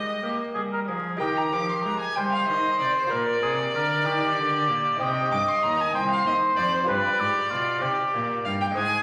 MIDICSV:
0, 0, Header, 1, 5, 480
1, 0, Start_track
1, 0, Key_signature, -3, "major"
1, 0, Tempo, 640342
1, 897, Time_signature, 6, 3, 24, 8
1, 3283, Tempo, 624350
1, 6856, End_track
2, 0, Start_track
2, 0, Title_t, "Violin"
2, 0, Program_c, 0, 40
2, 0, Note_on_c, 0, 75, 117
2, 651, Note_off_c, 0, 75, 0
2, 896, Note_on_c, 0, 79, 113
2, 1028, Note_on_c, 0, 82, 100
2, 1039, Note_off_c, 0, 79, 0
2, 1144, Note_on_c, 0, 86, 112
2, 1155, Note_off_c, 0, 82, 0
2, 1270, Note_on_c, 0, 84, 99
2, 1281, Note_off_c, 0, 86, 0
2, 1370, Note_off_c, 0, 84, 0
2, 1374, Note_on_c, 0, 82, 116
2, 1493, Note_off_c, 0, 82, 0
2, 1497, Note_on_c, 0, 80, 118
2, 1615, Note_on_c, 0, 79, 117
2, 1627, Note_off_c, 0, 80, 0
2, 1735, Note_off_c, 0, 79, 0
2, 1739, Note_on_c, 0, 77, 115
2, 1852, Note_off_c, 0, 77, 0
2, 1856, Note_on_c, 0, 75, 120
2, 2089, Note_off_c, 0, 75, 0
2, 2094, Note_on_c, 0, 74, 121
2, 2209, Note_off_c, 0, 74, 0
2, 2213, Note_on_c, 0, 72, 108
2, 2325, Note_on_c, 0, 74, 127
2, 2337, Note_off_c, 0, 72, 0
2, 3758, Note_off_c, 0, 74, 0
2, 3763, Note_on_c, 0, 79, 127
2, 4003, Note_on_c, 0, 86, 118
2, 4014, Note_off_c, 0, 79, 0
2, 4129, Note_on_c, 0, 84, 109
2, 4140, Note_off_c, 0, 86, 0
2, 4241, Note_on_c, 0, 82, 127
2, 4252, Note_off_c, 0, 84, 0
2, 4378, Note_on_c, 0, 80, 121
2, 4390, Note_off_c, 0, 82, 0
2, 4480, Note_off_c, 0, 80, 0
2, 4485, Note_on_c, 0, 79, 119
2, 4602, Note_off_c, 0, 79, 0
2, 4609, Note_on_c, 0, 77, 122
2, 4724, Note_off_c, 0, 77, 0
2, 4734, Note_on_c, 0, 75, 116
2, 4795, Note_off_c, 0, 75, 0
2, 4960, Note_on_c, 0, 74, 124
2, 5078, Note_off_c, 0, 74, 0
2, 5093, Note_on_c, 0, 72, 116
2, 5139, Note_off_c, 0, 72, 0
2, 5209, Note_on_c, 0, 74, 127
2, 6387, Note_off_c, 0, 74, 0
2, 6410, Note_on_c, 0, 77, 126
2, 6457, Note_off_c, 0, 77, 0
2, 6534, Note_on_c, 0, 79, 122
2, 6580, Note_off_c, 0, 79, 0
2, 6653, Note_on_c, 0, 80, 127
2, 6856, Note_off_c, 0, 80, 0
2, 6856, End_track
3, 0, Start_track
3, 0, Title_t, "Oboe"
3, 0, Program_c, 1, 68
3, 0, Note_on_c, 1, 67, 78
3, 118, Note_off_c, 1, 67, 0
3, 172, Note_on_c, 1, 67, 81
3, 280, Note_off_c, 1, 67, 0
3, 408, Note_on_c, 1, 68, 86
3, 463, Note_off_c, 1, 68, 0
3, 549, Note_on_c, 1, 70, 90
3, 600, Note_off_c, 1, 70, 0
3, 658, Note_on_c, 1, 68, 74
3, 894, Note_off_c, 1, 68, 0
3, 906, Note_on_c, 1, 67, 97
3, 1591, Note_off_c, 1, 67, 0
3, 1631, Note_on_c, 1, 72, 105
3, 2335, Note_on_c, 1, 70, 86
3, 2346, Note_off_c, 1, 72, 0
3, 2567, Note_off_c, 1, 70, 0
3, 2572, Note_on_c, 1, 68, 99
3, 2679, Note_off_c, 1, 68, 0
3, 2817, Note_on_c, 1, 70, 91
3, 3043, Note_on_c, 1, 67, 107
3, 3054, Note_off_c, 1, 70, 0
3, 3762, Note_off_c, 1, 67, 0
3, 3766, Note_on_c, 1, 75, 110
3, 4471, Note_off_c, 1, 75, 0
3, 4491, Note_on_c, 1, 72, 116
3, 5191, Note_off_c, 1, 72, 0
3, 5208, Note_on_c, 1, 71, 108
3, 5447, Note_on_c, 1, 67, 109
3, 5458, Note_off_c, 1, 71, 0
3, 5690, Note_on_c, 1, 65, 97
3, 5701, Note_off_c, 1, 67, 0
3, 5930, Note_on_c, 1, 67, 104
3, 5941, Note_off_c, 1, 65, 0
3, 6437, Note_off_c, 1, 67, 0
3, 6643, Note_on_c, 1, 68, 106
3, 6856, Note_off_c, 1, 68, 0
3, 6856, End_track
4, 0, Start_track
4, 0, Title_t, "Lute"
4, 0, Program_c, 2, 24
4, 0, Note_on_c, 2, 56, 63
4, 0, Note_on_c, 2, 63, 58
4, 0, Note_on_c, 2, 67, 62
4, 0, Note_on_c, 2, 70, 60
4, 145, Note_off_c, 2, 56, 0
4, 173, Note_on_c, 2, 58, 67
4, 388, Note_off_c, 2, 58, 0
4, 416, Note_on_c, 2, 55, 64
4, 633, Note_off_c, 2, 55, 0
4, 660, Note_on_c, 2, 53, 63
4, 852, Note_off_c, 2, 63, 0
4, 857, Note_off_c, 2, 67, 0
4, 865, Note_off_c, 2, 70, 0
4, 875, Note_on_c, 2, 63, 72
4, 876, Note_off_c, 2, 53, 0
4, 884, Note_on_c, 2, 67, 66
4, 896, Note_on_c, 2, 70, 71
4, 908, Note_on_c, 2, 51, 74
4, 1120, Note_off_c, 2, 51, 0
4, 1148, Note_on_c, 2, 53, 77
4, 1360, Note_off_c, 2, 53, 0
4, 1389, Note_on_c, 2, 56, 79
4, 1599, Note_off_c, 2, 56, 0
4, 1628, Note_on_c, 2, 55, 73
4, 1837, Note_off_c, 2, 55, 0
4, 1864, Note_on_c, 2, 51, 73
4, 2074, Note_off_c, 2, 51, 0
4, 2103, Note_on_c, 2, 48, 80
4, 2292, Note_off_c, 2, 63, 0
4, 2292, Note_off_c, 2, 67, 0
4, 2295, Note_on_c, 2, 65, 67
4, 2302, Note_off_c, 2, 70, 0
4, 2305, Note_on_c, 2, 68, 69
4, 2314, Note_off_c, 2, 48, 0
4, 2315, Note_off_c, 2, 68, 0
4, 2318, Note_on_c, 2, 70, 67
4, 2331, Note_on_c, 2, 46, 76
4, 2547, Note_off_c, 2, 46, 0
4, 2571, Note_on_c, 2, 48, 73
4, 2785, Note_off_c, 2, 48, 0
4, 2811, Note_on_c, 2, 50, 80
4, 3007, Note_off_c, 2, 65, 0
4, 3007, Note_on_c, 2, 63, 71
4, 3018, Note_off_c, 2, 70, 0
4, 3023, Note_on_c, 2, 67, 74
4, 3024, Note_off_c, 2, 50, 0
4, 3030, Note_on_c, 2, 70, 71
4, 3043, Note_on_c, 2, 51, 74
4, 3258, Note_off_c, 2, 51, 0
4, 3288, Note_on_c, 2, 50, 71
4, 3503, Note_off_c, 2, 50, 0
4, 3528, Note_on_c, 2, 46, 78
4, 3721, Note_off_c, 2, 63, 0
4, 3729, Note_off_c, 2, 67, 0
4, 3730, Note_on_c, 2, 63, 71
4, 3733, Note_off_c, 2, 70, 0
4, 3741, Note_on_c, 2, 67, 74
4, 3742, Note_off_c, 2, 46, 0
4, 3753, Note_on_c, 2, 72, 71
4, 3762, Note_on_c, 2, 48, 80
4, 3979, Note_off_c, 2, 48, 0
4, 4007, Note_on_c, 2, 43, 77
4, 4222, Note_off_c, 2, 43, 0
4, 4253, Note_on_c, 2, 39, 83
4, 4465, Note_off_c, 2, 39, 0
4, 4730, Note_on_c, 2, 39, 73
4, 4942, Note_off_c, 2, 39, 0
4, 4973, Note_on_c, 2, 41, 88
4, 5155, Note_off_c, 2, 63, 0
4, 5160, Note_off_c, 2, 67, 0
4, 5167, Note_off_c, 2, 72, 0
4, 5174, Note_on_c, 2, 65, 78
4, 5184, Note_off_c, 2, 41, 0
4, 5188, Note_on_c, 2, 67, 78
4, 5199, Note_on_c, 2, 71, 77
4, 5210, Note_on_c, 2, 43, 84
4, 5424, Note_off_c, 2, 43, 0
4, 5452, Note_on_c, 2, 44, 79
4, 5667, Note_off_c, 2, 44, 0
4, 5696, Note_on_c, 2, 47, 86
4, 5892, Note_off_c, 2, 65, 0
4, 5899, Note_off_c, 2, 67, 0
4, 5899, Note_on_c, 2, 63, 74
4, 5905, Note_off_c, 2, 71, 0
4, 5909, Note_off_c, 2, 47, 0
4, 5909, Note_on_c, 2, 67, 76
4, 5919, Note_on_c, 2, 72, 70
4, 5932, Note_on_c, 2, 48, 82
4, 6146, Note_off_c, 2, 48, 0
4, 6172, Note_on_c, 2, 46, 74
4, 6386, Note_off_c, 2, 46, 0
4, 6416, Note_on_c, 2, 43, 83
4, 6608, Note_off_c, 2, 63, 0
4, 6609, Note_on_c, 2, 56, 90
4, 6615, Note_off_c, 2, 67, 0
4, 6618, Note_on_c, 2, 63, 71
4, 6621, Note_off_c, 2, 72, 0
4, 6628, Note_off_c, 2, 43, 0
4, 6632, Note_on_c, 2, 68, 75
4, 6644, Note_on_c, 2, 72, 74
4, 6653, Note_on_c, 2, 44, 83
4, 6856, Note_off_c, 2, 44, 0
4, 6856, Note_off_c, 2, 56, 0
4, 6856, Note_off_c, 2, 63, 0
4, 6856, Note_off_c, 2, 68, 0
4, 6856, Note_off_c, 2, 72, 0
4, 6856, End_track
5, 0, Start_track
5, 0, Title_t, "Cello"
5, 0, Program_c, 3, 42
5, 0, Note_on_c, 3, 56, 77
5, 170, Note_off_c, 3, 56, 0
5, 174, Note_on_c, 3, 58, 76
5, 408, Note_off_c, 3, 58, 0
5, 419, Note_on_c, 3, 55, 74
5, 661, Note_on_c, 3, 53, 79
5, 672, Note_off_c, 3, 55, 0
5, 901, Note_off_c, 3, 53, 0
5, 905, Note_on_c, 3, 51, 106
5, 1126, Note_off_c, 3, 51, 0
5, 1146, Note_on_c, 3, 53, 101
5, 1377, Note_off_c, 3, 53, 0
5, 1385, Note_on_c, 3, 56, 86
5, 1445, Note_off_c, 3, 56, 0
5, 1624, Note_on_c, 3, 55, 91
5, 1853, Note_off_c, 3, 55, 0
5, 1860, Note_on_c, 3, 51, 87
5, 2091, Note_off_c, 3, 51, 0
5, 2099, Note_on_c, 3, 48, 93
5, 2159, Note_off_c, 3, 48, 0
5, 2337, Note_on_c, 3, 46, 98
5, 2569, Note_off_c, 3, 46, 0
5, 2579, Note_on_c, 3, 48, 101
5, 2809, Note_off_c, 3, 48, 0
5, 2814, Note_on_c, 3, 50, 87
5, 3045, Note_off_c, 3, 50, 0
5, 3053, Note_on_c, 3, 51, 100
5, 3291, Note_on_c, 3, 50, 92
5, 3302, Note_off_c, 3, 51, 0
5, 3528, Note_on_c, 3, 46, 96
5, 3539, Note_off_c, 3, 50, 0
5, 3760, Note_off_c, 3, 46, 0
5, 3765, Note_on_c, 3, 48, 110
5, 3999, Note_off_c, 3, 48, 0
5, 4003, Note_on_c, 3, 43, 102
5, 4065, Note_off_c, 3, 43, 0
5, 4245, Note_on_c, 3, 39, 89
5, 4480, Note_off_c, 3, 39, 0
5, 4488, Note_on_c, 3, 36, 101
5, 4714, Note_off_c, 3, 36, 0
5, 4718, Note_on_c, 3, 39, 95
5, 4780, Note_off_c, 3, 39, 0
5, 4960, Note_on_c, 3, 41, 100
5, 5196, Note_off_c, 3, 41, 0
5, 5206, Note_on_c, 3, 43, 119
5, 5267, Note_off_c, 3, 43, 0
5, 5448, Note_on_c, 3, 44, 107
5, 5509, Note_off_c, 3, 44, 0
5, 5695, Note_on_c, 3, 47, 92
5, 5928, Note_off_c, 3, 47, 0
5, 5933, Note_on_c, 3, 48, 91
5, 5994, Note_off_c, 3, 48, 0
5, 6175, Note_on_c, 3, 46, 102
5, 6407, Note_off_c, 3, 46, 0
5, 6413, Note_on_c, 3, 43, 100
5, 6642, Note_off_c, 3, 43, 0
5, 6646, Note_on_c, 3, 44, 105
5, 6856, Note_off_c, 3, 44, 0
5, 6856, End_track
0, 0, End_of_file